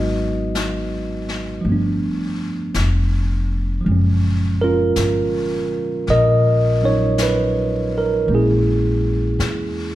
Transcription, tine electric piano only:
0, 0, Header, 1, 2, 480
1, 0, Start_track
1, 0, Key_signature, 6, "major"
1, 0, Tempo, 1104972
1, 1675, Time_signature, 4, 2, 24, 8
1, 4322, End_track
2, 0, Start_track
2, 0, Title_t, "Tine electric piano"
2, 0, Program_c, 0, 4
2, 0, Control_c, 0, 64, 127
2, 0, Note_on_c, 0, 54, 33
2, 0, Note_on_c, 0, 56, 32
2, 0, Note_on_c, 0, 59, 31
2, 0, Note_on_c, 0, 63, 38
2, 0, Note_on_c, 0, 66, 41
2, 0, Note_on_c, 0, 71, 41
2, 0, Note_on_c, 0, 75, 59
2, 550, Note_off_c, 0, 75, 0
2, 553, Note_off_c, 0, 71, 0
2, 554, Note_off_c, 0, 66, 0
2, 701, Note_on_c, 0, 53, 41
2, 715, Note_on_c, 0, 57, 35
2, 718, Note_off_c, 0, 54, 0
2, 722, Note_off_c, 0, 56, 0
2, 723, Control_c, 0, 64, 0
2, 725, Note_off_c, 0, 59, 0
2, 727, Note_off_c, 0, 63, 0
2, 735, Note_on_c, 0, 59, 36
2, 747, Note_on_c, 0, 62, 42
2, 793, Control_c, 0, 64, 127
2, 1649, Note_off_c, 0, 53, 0
2, 1655, Note_on_c, 0, 53, 35
2, 1671, Note_on_c, 0, 56, 36
2, 1674, Note_off_c, 0, 57, 0
2, 1681, Control_c, 0, 64, 0
2, 1684, Note_off_c, 0, 59, 0
2, 1686, Note_on_c, 0, 46, 36
2, 1690, Note_off_c, 0, 62, 0
2, 1702, Note_on_c, 0, 61, 41
2, 1744, Control_c, 0, 64, 127
2, 2005, Note_on_c, 0, 70, 70
2, 2011, Note_off_c, 0, 61, 0
2, 2016, Note_on_c, 0, 61, 49
2, 2016, Note_on_c, 0, 65, 51
2, 2464, Note_off_c, 0, 70, 0
2, 2651, Note_on_c, 0, 75, 73
2, 2653, Note_on_c, 0, 70, 53
2, 2951, Note_off_c, 0, 61, 0
2, 2951, Note_off_c, 0, 65, 0
2, 2961, Note_on_c, 0, 54, 32
2, 2967, Note_on_c, 0, 61, 30
2, 2972, Note_on_c, 0, 63, 35
2, 2975, Note_off_c, 0, 75, 0
2, 2977, Note_on_c, 0, 73, 65
2, 3132, Note_off_c, 0, 73, 0
2, 3139, Note_on_c, 0, 71, 69
2, 3434, Note_off_c, 0, 71, 0
2, 3461, Note_off_c, 0, 70, 0
2, 3466, Note_on_c, 0, 70, 62
2, 3590, Note_off_c, 0, 53, 0
2, 3592, Note_on_c, 0, 52, 35
2, 3595, Note_off_c, 0, 56, 0
2, 3600, Note_on_c, 0, 56, 35
2, 3601, Note_off_c, 0, 54, 0
2, 3604, Note_off_c, 0, 61, 0
2, 3605, Note_off_c, 0, 46, 0
2, 3605, Note_on_c, 0, 58, 33
2, 3606, Control_c, 0, 64, 0
2, 3607, Note_off_c, 0, 63, 0
2, 3615, Note_on_c, 0, 61, 40
2, 3617, Note_off_c, 0, 70, 0
2, 3624, Note_on_c, 0, 64, 43
2, 3626, Note_on_c, 0, 68, 62
2, 3672, Control_c, 0, 64, 127
2, 4322, Note_off_c, 0, 52, 0
2, 4322, Note_off_c, 0, 56, 0
2, 4322, Note_off_c, 0, 58, 0
2, 4322, Note_off_c, 0, 61, 0
2, 4322, Note_off_c, 0, 64, 0
2, 4322, Note_off_c, 0, 68, 0
2, 4322, End_track
0, 0, End_of_file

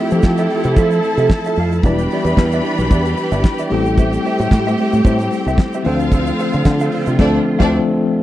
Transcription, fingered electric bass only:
0, 0, Header, 1, 2, 480
1, 0, Start_track
1, 0, Tempo, 534759
1, 1648, Time_signature, 4, 2, 24, 8
1, 7386, End_track
2, 0, Start_track
2, 0, Title_t, "Fingered electric bass"
2, 0, Program_c, 0, 33
2, 106, Note_on_c, 0, 53, 96
2, 197, Note_off_c, 0, 53, 0
2, 213, Note_on_c, 0, 53, 99
2, 413, Note_off_c, 0, 53, 0
2, 581, Note_on_c, 0, 48, 84
2, 674, Note_off_c, 0, 48, 0
2, 691, Note_on_c, 0, 53, 93
2, 892, Note_off_c, 0, 53, 0
2, 1054, Note_on_c, 0, 48, 93
2, 1150, Note_off_c, 0, 48, 0
2, 1412, Note_on_c, 0, 41, 82
2, 1612, Note_off_c, 0, 41, 0
2, 1647, Note_on_c, 0, 28, 107
2, 1849, Note_off_c, 0, 28, 0
2, 2018, Note_on_c, 0, 40, 102
2, 2111, Note_off_c, 0, 40, 0
2, 2132, Note_on_c, 0, 40, 106
2, 2332, Note_off_c, 0, 40, 0
2, 2501, Note_on_c, 0, 35, 83
2, 2593, Note_off_c, 0, 35, 0
2, 2611, Note_on_c, 0, 40, 85
2, 2811, Note_off_c, 0, 40, 0
2, 2978, Note_on_c, 0, 31, 97
2, 3071, Note_off_c, 0, 31, 0
2, 3336, Note_on_c, 0, 33, 88
2, 3736, Note_off_c, 0, 33, 0
2, 3946, Note_on_c, 0, 45, 102
2, 4036, Note_off_c, 0, 45, 0
2, 4051, Note_on_c, 0, 45, 103
2, 4251, Note_off_c, 0, 45, 0
2, 4426, Note_on_c, 0, 45, 94
2, 4516, Note_off_c, 0, 45, 0
2, 4532, Note_on_c, 0, 45, 93
2, 4732, Note_off_c, 0, 45, 0
2, 4905, Note_on_c, 0, 36, 85
2, 4996, Note_off_c, 0, 36, 0
2, 5261, Note_on_c, 0, 38, 102
2, 5660, Note_off_c, 0, 38, 0
2, 5871, Note_on_c, 0, 50, 97
2, 5960, Note_off_c, 0, 50, 0
2, 5977, Note_on_c, 0, 50, 109
2, 6176, Note_off_c, 0, 50, 0
2, 6348, Note_on_c, 0, 48, 99
2, 6439, Note_off_c, 0, 48, 0
2, 6457, Note_on_c, 0, 38, 94
2, 6621, Note_off_c, 0, 38, 0
2, 6825, Note_on_c, 0, 38, 108
2, 6984, Note_off_c, 0, 38, 0
2, 7386, End_track
0, 0, End_of_file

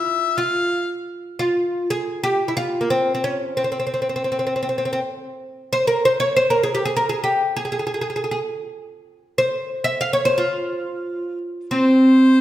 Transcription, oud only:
0, 0, Header, 1, 2, 480
1, 0, Start_track
1, 0, Tempo, 666667
1, 753, Time_signature, 4, 2, 24, 8
1, 8934, End_track
2, 0, Start_track
2, 0, Title_t, "Oud"
2, 0, Program_c, 0, 24
2, 0, Note_on_c, 0, 64, 86
2, 268, Note_off_c, 0, 64, 0
2, 271, Note_on_c, 0, 65, 76
2, 607, Note_off_c, 0, 65, 0
2, 1003, Note_on_c, 0, 65, 84
2, 1368, Note_off_c, 0, 65, 0
2, 1371, Note_on_c, 0, 68, 89
2, 1606, Note_off_c, 0, 68, 0
2, 1609, Note_on_c, 0, 67, 92
2, 1784, Note_off_c, 0, 67, 0
2, 1787, Note_on_c, 0, 64, 64
2, 1837, Note_off_c, 0, 64, 0
2, 1849, Note_on_c, 0, 65, 88
2, 2022, Note_on_c, 0, 58, 52
2, 2038, Note_off_c, 0, 65, 0
2, 2075, Note_off_c, 0, 58, 0
2, 2090, Note_on_c, 0, 60, 78
2, 2256, Note_off_c, 0, 60, 0
2, 2265, Note_on_c, 0, 60, 58
2, 2316, Note_off_c, 0, 60, 0
2, 2333, Note_on_c, 0, 61, 77
2, 2549, Note_off_c, 0, 61, 0
2, 2570, Note_on_c, 0, 60, 67
2, 2615, Note_off_c, 0, 60, 0
2, 2622, Note_on_c, 0, 60, 50
2, 2668, Note_off_c, 0, 60, 0
2, 2677, Note_on_c, 0, 60, 51
2, 2722, Note_off_c, 0, 60, 0
2, 2733, Note_on_c, 0, 60, 46
2, 2775, Note_off_c, 0, 60, 0
2, 2784, Note_on_c, 0, 60, 50
2, 2826, Note_off_c, 0, 60, 0
2, 2835, Note_on_c, 0, 60, 49
2, 2882, Note_off_c, 0, 60, 0
2, 2893, Note_on_c, 0, 60, 51
2, 2938, Note_off_c, 0, 60, 0
2, 2948, Note_on_c, 0, 60, 46
2, 2986, Note_off_c, 0, 60, 0
2, 2995, Note_on_c, 0, 60, 52
2, 3043, Note_off_c, 0, 60, 0
2, 3055, Note_on_c, 0, 60, 42
2, 3100, Note_off_c, 0, 60, 0
2, 3109, Note_on_c, 0, 60, 52
2, 3153, Note_off_c, 0, 60, 0
2, 3161, Note_on_c, 0, 60, 46
2, 3208, Note_off_c, 0, 60, 0
2, 3216, Note_on_c, 0, 60, 53
2, 3262, Note_off_c, 0, 60, 0
2, 3282, Note_on_c, 0, 60, 44
2, 3323, Note_off_c, 0, 60, 0
2, 3331, Note_on_c, 0, 60, 53
2, 3368, Note_off_c, 0, 60, 0
2, 3377, Note_on_c, 0, 60, 44
2, 3423, Note_off_c, 0, 60, 0
2, 3442, Note_on_c, 0, 60, 51
2, 3484, Note_off_c, 0, 60, 0
2, 3494, Note_on_c, 0, 60, 49
2, 3537, Note_off_c, 0, 60, 0
2, 3548, Note_on_c, 0, 60, 65
2, 3591, Note_off_c, 0, 60, 0
2, 4123, Note_on_c, 0, 72, 98
2, 4227, Note_off_c, 0, 72, 0
2, 4230, Note_on_c, 0, 70, 86
2, 4350, Note_off_c, 0, 70, 0
2, 4358, Note_on_c, 0, 72, 90
2, 4460, Note_off_c, 0, 72, 0
2, 4463, Note_on_c, 0, 73, 93
2, 4577, Note_off_c, 0, 73, 0
2, 4583, Note_on_c, 0, 72, 97
2, 4679, Note_off_c, 0, 72, 0
2, 4682, Note_on_c, 0, 70, 84
2, 4769, Note_off_c, 0, 70, 0
2, 4777, Note_on_c, 0, 68, 82
2, 4853, Note_off_c, 0, 68, 0
2, 4857, Note_on_c, 0, 67, 81
2, 4924, Note_off_c, 0, 67, 0
2, 4935, Note_on_c, 0, 68, 82
2, 5006, Note_off_c, 0, 68, 0
2, 5015, Note_on_c, 0, 70, 87
2, 5103, Note_off_c, 0, 70, 0
2, 5107, Note_on_c, 0, 68, 79
2, 5207, Note_off_c, 0, 68, 0
2, 5210, Note_on_c, 0, 67, 81
2, 5444, Note_off_c, 0, 67, 0
2, 5447, Note_on_c, 0, 68, 77
2, 5493, Note_off_c, 0, 68, 0
2, 5507, Note_on_c, 0, 68, 54
2, 5549, Note_off_c, 0, 68, 0
2, 5558, Note_on_c, 0, 68, 58
2, 5603, Note_off_c, 0, 68, 0
2, 5611, Note_on_c, 0, 68, 47
2, 5656, Note_off_c, 0, 68, 0
2, 5664, Note_on_c, 0, 68, 58
2, 5710, Note_off_c, 0, 68, 0
2, 5718, Note_on_c, 0, 68, 51
2, 5761, Note_off_c, 0, 68, 0
2, 5770, Note_on_c, 0, 68, 60
2, 5817, Note_off_c, 0, 68, 0
2, 5831, Note_on_c, 0, 68, 44
2, 5866, Note_off_c, 0, 68, 0
2, 5875, Note_on_c, 0, 68, 55
2, 5923, Note_off_c, 0, 68, 0
2, 5932, Note_on_c, 0, 68, 53
2, 5977, Note_off_c, 0, 68, 0
2, 5986, Note_on_c, 0, 68, 64
2, 6033, Note_off_c, 0, 68, 0
2, 6755, Note_on_c, 0, 72, 95
2, 7084, Note_off_c, 0, 72, 0
2, 7087, Note_on_c, 0, 76, 95
2, 7202, Note_off_c, 0, 76, 0
2, 7205, Note_on_c, 0, 77, 92
2, 7292, Note_off_c, 0, 77, 0
2, 7295, Note_on_c, 0, 73, 91
2, 7377, Note_off_c, 0, 73, 0
2, 7382, Note_on_c, 0, 72, 96
2, 7471, Note_on_c, 0, 65, 83
2, 7482, Note_off_c, 0, 72, 0
2, 8193, Note_off_c, 0, 65, 0
2, 8431, Note_on_c, 0, 60, 76
2, 8934, Note_off_c, 0, 60, 0
2, 8934, End_track
0, 0, End_of_file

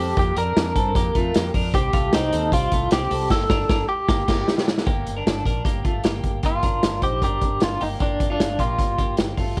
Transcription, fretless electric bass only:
0, 0, Header, 1, 2, 480
1, 0, Start_track
1, 0, Key_signature, -2, "minor"
1, 0, Tempo, 391645
1, 212, Time_signature, 4, 2, 24, 8
1, 11766, End_track
2, 0, Start_track
2, 0, Title_t, "Fretless electric bass"
2, 0, Program_c, 0, 35
2, 0, Note_on_c, 0, 41, 108
2, 163, Note_off_c, 0, 41, 0
2, 211, Note_on_c, 0, 41, 88
2, 408, Note_off_c, 0, 41, 0
2, 445, Note_on_c, 0, 41, 86
2, 645, Note_off_c, 0, 41, 0
2, 687, Note_on_c, 0, 41, 105
2, 886, Note_off_c, 0, 41, 0
2, 926, Note_on_c, 0, 43, 90
2, 1126, Note_off_c, 0, 43, 0
2, 1166, Note_on_c, 0, 41, 98
2, 1365, Note_off_c, 0, 41, 0
2, 1412, Note_on_c, 0, 41, 89
2, 1609, Note_off_c, 0, 41, 0
2, 1658, Note_on_c, 0, 41, 92
2, 1852, Note_off_c, 0, 41, 0
2, 1892, Note_on_c, 0, 41, 100
2, 2089, Note_off_c, 0, 41, 0
2, 2132, Note_on_c, 0, 36, 96
2, 2328, Note_off_c, 0, 36, 0
2, 2373, Note_on_c, 0, 36, 91
2, 2569, Note_off_c, 0, 36, 0
2, 2624, Note_on_c, 0, 36, 96
2, 2815, Note_off_c, 0, 36, 0
2, 2856, Note_on_c, 0, 39, 97
2, 3050, Note_off_c, 0, 39, 0
2, 3090, Note_on_c, 0, 36, 107
2, 3287, Note_off_c, 0, 36, 0
2, 3334, Note_on_c, 0, 36, 101
2, 3529, Note_off_c, 0, 36, 0
2, 3572, Note_on_c, 0, 36, 82
2, 3768, Note_off_c, 0, 36, 0
2, 3808, Note_on_c, 0, 36, 104
2, 4005, Note_off_c, 0, 36, 0
2, 4050, Note_on_c, 0, 31, 99
2, 4213, Note_off_c, 0, 31, 0
2, 4291, Note_on_c, 0, 31, 97
2, 4453, Note_off_c, 0, 31, 0
2, 4530, Note_on_c, 0, 31, 105
2, 4692, Note_off_c, 0, 31, 0
2, 5010, Note_on_c, 0, 31, 89
2, 5172, Note_off_c, 0, 31, 0
2, 5250, Note_on_c, 0, 31, 103
2, 5412, Note_off_c, 0, 31, 0
2, 5968, Note_on_c, 0, 31, 96
2, 6165, Note_off_c, 0, 31, 0
2, 6210, Note_on_c, 0, 31, 92
2, 6406, Note_off_c, 0, 31, 0
2, 6445, Note_on_c, 0, 31, 95
2, 6643, Note_off_c, 0, 31, 0
2, 6683, Note_on_c, 0, 34, 91
2, 6882, Note_off_c, 0, 34, 0
2, 6925, Note_on_c, 0, 31, 86
2, 7123, Note_off_c, 0, 31, 0
2, 7170, Note_on_c, 0, 31, 85
2, 7366, Note_off_c, 0, 31, 0
2, 7402, Note_on_c, 0, 31, 88
2, 7602, Note_off_c, 0, 31, 0
2, 7647, Note_on_c, 0, 31, 101
2, 7845, Note_off_c, 0, 31, 0
2, 7888, Note_on_c, 0, 31, 94
2, 8085, Note_off_c, 0, 31, 0
2, 8127, Note_on_c, 0, 31, 80
2, 8325, Note_off_c, 0, 31, 0
2, 8368, Note_on_c, 0, 31, 85
2, 8566, Note_off_c, 0, 31, 0
2, 8610, Note_on_c, 0, 34, 86
2, 8807, Note_off_c, 0, 34, 0
2, 8847, Note_on_c, 0, 31, 81
2, 9046, Note_off_c, 0, 31, 0
2, 9093, Note_on_c, 0, 31, 85
2, 9290, Note_off_c, 0, 31, 0
2, 9336, Note_on_c, 0, 31, 97
2, 9531, Note_off_c, 0, 31, 0
2, 9572, Note_on_c, 0, 31, 99
2, 9770, Note_off_c, 0, 31, 0
2, 9810, Note_on_c, 0, 31, 92
2, 10008, Note_off_c, 0, 31, 0
2, 10052, Note_on_c, 0, 31, 79
2, 10250, Note_off_c, 0, 31, 0
2, 10288, Note_on_c, 0, 31, 99
2, 10487, Note_off_c, 0, 31, 0
2, 10528, Note_on_c, 0, 34, 96
2, 10727, Note_off_c, 0, 34, 0
2, 10769, Note_on_c, 0, 31, 78
2, 10969, Note_off_c, 0, 31, 0
2, 11013, Note_on_c, 0, 31, 84
2, 11211, Note_off_c, 0, 31, 0
2, 11251, Note_on_c, 0, 31, 86
2, 11450, Note_off_c, 0, 31, 0
2, 11489, Note_on_c, 0, 31, 111
2, 11689, Note_off_c, 0, 31, 0
2, 11728, Note_on_c, 0, 31, 97
2, 11766, Note_off_c, 0, 31, 0
2, 11766, End_track
0, 0, End_of_file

